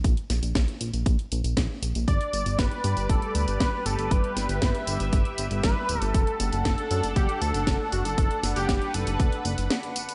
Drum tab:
HH |xxxxxxxxxxxxx-xx|xxxxxxxxxxxxx-xx|xxxxxxxxxxxxx-xx|xxxxxxxxxxxxx-xx|
TB |x-xxx-xxx-xxx-xx|x-xxx-xxx-xxx-xx|x-xxx-xxx-xxx-xx|x-xxx-xxx-xxx-xx|
SD |--o-o-------o---|----o-------o---|--o-o-------o---|----o-------o---|
BD |o---o---o---o---|o---o---o---o---|o---o---o---o---|o---o---o---o---|

HH |xxxxxxxxxxxxxxxx|
TB |x-xxx-xxx-xxx-xx|
SD |--o-o-------o---|
BD |o---o---o-------|